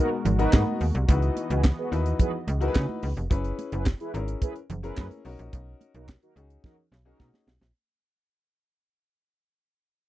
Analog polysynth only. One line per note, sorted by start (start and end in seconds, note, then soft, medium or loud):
0.39 0.63 D#4 loud
0.39 0.63 F#4 loud
0.39 0.63 B4 loud
1.50 1.62 F#4 medium
1.50 1.62 G#4 medium
1.50 1.62 B4 medium
1.78 1.90 F#4 medium
1.78 1.90 G#4 medium
1.78 1.90 B4 loud
2.20 2.31 F#4 loud
2.20 2.31 G#4 loud
2.20 2.31 B4 loud
2.61 2.85 F#4 loud
2.61 2.85 G#4 loud
2.61 2.85 B4 loud
3.72 3.84 E4 medium
3.72 3.84 G#4 medium
3.72 3.84 B4 medium
4.00 4.12 E4 medium
4.00 4.12 G#4 medium
4.00 4.12 B4 medium
4.42 4.54 E4 loud
4.42 4.54 G#4 loud
4.42 4.54 B4 loud
4.83 5.07 E4 loud
4.83 5.07 G#4 loud
4.83 5.07 B4 loud
5.94 6.06 D#4 medium
5.94 6.06 F#4 medium
5.94 6.06 A#4 medium
6.22 6.34 D#4 medium
6.22 6.34 F#4 medium
6.22 6.34 A#4 medium
6.64 6.76 D#4 loud
6.64 6.76 F#4 medium
6.64 6.76 A#4 loud
7.06 7.29 D#4 loud
7.06 7.29 F#4 loud
7.06 7.29 A#4 loud